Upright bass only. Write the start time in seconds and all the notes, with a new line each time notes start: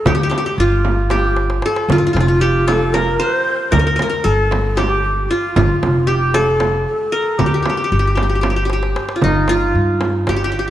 0.05 D2
0.58 G1
1.88 G1
2.14 F1
3.73 D2
4.25 G1
5.56 G1
5.83 F1
7.39 D2
7.92 G1
9.23 G1
9.75 G2
10.27 G1